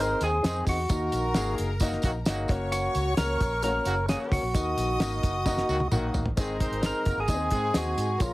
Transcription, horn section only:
0.22 D#3 G#3 C4 G#4
0.44 D#3 G#3 C4 G#4
1.82 D#3 F#3 A#3 F#4
2.04 D#3 F#3 A#3 F#4
2.27 C#3 F#3 A#3 F#4
3.63 C#3 F#3 A#3 F#4
3.86 C#3 F#3 A#3 F#4
4.09 C#3 F#3 A#3 F#4
5.47 D#3 F#3 A#3 F#4
5.70 D#3 F#3 A#3 F#4
5.92 D#3 F#3 A#3 F#4
6.37 D#3 G#3 C4 G#4
6.60 G#3 C4 D#4 C5
7.06 A#3 F#4 A#4
7.28 D#3 G#3 C4 G#4
7.51 D#3 G#3 C4 G#4

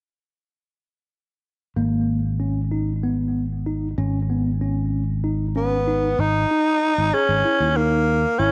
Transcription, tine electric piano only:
1.76 A#3
2.40 C#4
2.72 D#4
3.03 B3
3.67 D#4
3.98 C#4
4.30 B3
4.61 C#4
5.24 D#4
5.56 C#4
5.87 D#4
6.51 D#4
7.14 G#4
7.45 E4
7.77 D#4
8.39 E4

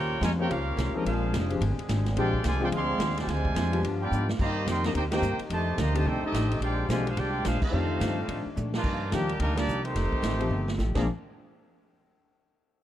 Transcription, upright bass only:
Already playing: D#2
0.21 F2
0.50 C#2
0.77 C2
0.94 muted upright bass stroke
1.05 A#1
1.34 F1
1.61 G1
1.78 muted upright bass stroke
1.89 G#1
2.17 A#1
2.44 C2
2.71 D2
2.98 D#2
3.27 D2
3.55 F2
3.83 G2
4.11 G#2
4.39 G2
4.66 F2
4.94 D#2
5.22 G2
5.39 muted upright bass stroke
5.50 F2
5.78 D2
6.05 C2
6.23 muted upright bass stroke
6.32 A1
6.60 A#1
6.89 B1
7.17 C2
7.45 A#1
7.62 muted upright bass stroke
7.73 F2
8.00 G2
8.28 A2
8.46 muted upright bass stroke
8.57 A#2
8.84 G2
9.12 D#2
9.40 D2
9.67 C2
9.95 F1
10.22 A1
10.50 G1
10.78 A1
10.96 A#1

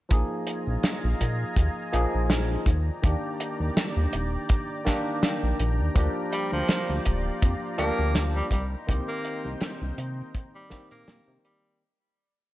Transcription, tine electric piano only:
0.09 F3 A#3 D#4 G#4
1.92 F3 A#3 D#4 G#4
3.02 D#3 A#3 D4 G4
4.84 D#3 A#3 D4 G4
5.94 F3 A#3 D4 G4
7.78 F3 A#3 D4 G4
8.87 D#3 A#3 C4 G4
10.69 D#3 A#3 C4 G4

